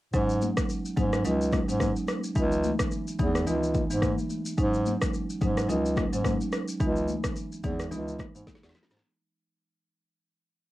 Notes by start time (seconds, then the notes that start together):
0.13 G#2 F#3 G#3 C#4 D#4, kick, shaker
0.30 shaker
0.42 high conga, shaker
0.57 kick, cross-stick, shaker
0.69 shaker
0.85 shaker
0.97 G#2 F#3 G#3 C#4 D#4, kick, high conga, low conga, shaker
1.13 cross-stick, shaker
1.24 C#2 F#3 G#3 C#4 D#4, low conga, shaker
1.41 shaker
1.52 kick, cross-stick, high conga, shaker
1.68 G#2 F#3 G#3 C#4 D#4, shaker
1.80 kick, cross-stick, high conga, shaker
1.96 shaker
2.07 cross-stick, high conga, shaker
2.24 shaker
2.35 C#2 E3 G#3 B3 D#4, kick, shaker
2.52 shaker
2.64 high conga, shaker
2.79 kick, cross-stick, shaker
2.91 shaker
3.07 shaker
3.19 E2 E3 G#3 B3 D#4, kick, high conga, low conga, shaker
3.35 cross-stick, shaker
3.47 C#2 E3 G#3 B3 D#4, low conga, shaker
3.63 shaker
3.74 kick, high conga, shaker
3.91 G#2 E3 G#3 B3 D#4, shaker
4.02 kick, cross-stick, high conga, shaker
4.18 shaker
4.29 high conga, shaker
4.46 shaker
4.58 G#2 F#3 G#3 C#4 D#4, kick, shaker
4.74 shaker
4.86 high conga, shaker
5.02 kick, cross-stick, shaker
5.14 shaker
5.30 shaker
5.41 G#2 F#3 G#3 C#4 D#4, kick, high conga, low conga, shaker
5.57 cross-stick, shaker
5.69 C#2 F#3 G#3 C#4 D#4, low conga, shaker
5.86 shaker
5.96 kick, cross-stick, high conga, shaker
6.13 G#2 F#3 G#3 C#4 D#4, shaker
6.25 kick, cross-stick, high conga, shaker
6.41 shaker
6.52 cross-stick, high conga, shaker
6.68 shaker
6.80 C#2 E3 G#3 B3 D#4, kick, shaker
6.96 shaker
7.08 high conga, shaker
7.24 kick, cross-stick, shaker
7.36 shaker
7.52 shaker
7.63 E2 E3 G#3 B3 D#4, kick, high conga, low conga, shaker
7.80 cross-stick, shaker
7.91 C#2 E3 G#3 B3 D#4, low conga, shaker
8.08 shaker
8.18 kick, cross-stick, high conga, shaker
8.35 G#2 E3 G#3 B3 D#4, shaker
8.47 kick, snare, high conga, shaker
8.55 snare
8.63 E2, snare, shaker
8.69 snare
8.74 snare, high conga, low conga, shaker
8.83 snare
8.90 G#2, snare, shaker
8.97 snare